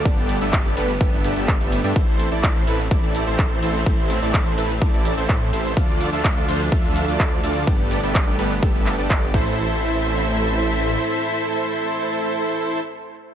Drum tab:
CC |----------------|----------------|----------------|----------------|
RD |--x---x---x---x-|--x---x---x---x-|--x---x---x---x-|--x---x---x---x-|
HH |xxoxxxoxxxoxxxox|xxoxxxoxxxoxxxox|xxoxxxoxxxoxxxox|xxoxxxoxxxoxxxox|
SH |x-xxx-xxxxxxxxxx|x-xxx-xxxxxxx-xx|x-xxx-xxxxxxx-xx|x-xxx-xxxxxxx-xx|
CP |----x-------x---|----x-------x---|----x-------x---|----x-------x---|
BD |o---o---o---o---|o---o---o---o---|o---o---o---o---|o---o---o---o---|

CC |--------------x-|----------------|----------------|
RD |--x---x---x-----|----------------|----------------|
HH |xxoxxxoxxxoxxx--|----------------|----------------|
SH |x-xxxxxxxxxxx---|----------------|----------------|
CP |----x-----x-x---|----------------|----------------|
BD |o---o---o---o-o-|----------------|----------------|